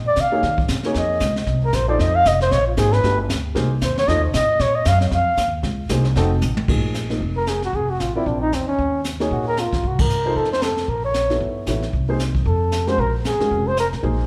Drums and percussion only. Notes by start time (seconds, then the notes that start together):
0.16 kick, snare, hi-hat pedal
0.43 brush sweep, kick, snare
0.58 kick
0.68 kick, snare, hi-hat pedal
0.83 snare
0.94 brush sweep, kick, snare
1.20 kick, snare, hi-hat pedal
1.36 snare
1.47 brush sweep, kick, snare
1.73 kick, snare, hi-hat pedal
1.99 brush sweep, kick, snare
2.25 kick, snare, hi-hat pedal
2.41 snare
2.51 brush sweep, kick, snare
2.77 kick, snare, hi-hat pedal
2.93 snare
3.03 brush sweep, kick, snare
3.29 kick, snare, hi-hat pedal
3.55 brush sweep, kick, snare
3.81 kick, snare, hi-hat pedal
3.97 snare
4.08 brush sweep, kick, snare
4.33 kick, snare, hi-hat pedal
4.59 brush sweep, kick, snare
4.85 kick, snare, hi-hat pedal
5.01 snare
5.11 brush sweep, kick, snare
5.37 kick, snare, hi-hat pedal
5.63 brush sweep, kick, snare
5.89 kick, snare, hi-hat pedal
6.04 snare
6.16 brush sweep, kick, snare
6.41 hi-hat pedal, high tom
6.57 high tom
6.68 brush sweep, kick, crash
6.94 snare, hi-hat pedal
7.10 snare
7.21 brush sweep, kick
7.47 snare, hi-hat pedal
7.62 snare
7.73 brush sweep, kick
8.00 snare, hi-hat pedal
8.26 brush sweep, kick
8.52 snare, hi-hat pedal
8.79 brush sweep, kick
9.04 snare, hi-hat pedal
9.20 snare
9.31 brush sweep, kick
9.57 snare, hi-hat pedal
9.73 kick, snare
9.84 brush sweep, kick
9.99 kick, ride
10.10 hi-hat pedal
10.36 brush sweep, kick
10.45 snare
10.53 snare
10.61 snare, hi-hat pedal
10.77 snare
10.88 brush sweep, kick
11.14 snare, hi-hat pedal
11.30 snare
11.41 brush sweep, kick
11.66 snare, hi-hat pedal
11.82 snare
11.93 brush sweep, kick
12.19 snare, hi-hat pedal
12.35 kick
12.46 brush sweep, kick
12.72 snare, hi-hat pedal
12.87 snare
12.98 brush sweep, kick
13.25 snare, hi-hat pedal
13.40 snare
13.51 brush sweep, kick
13.77 snare, hi-hat pedal
13.93 snare
14.03 brush sweep, kick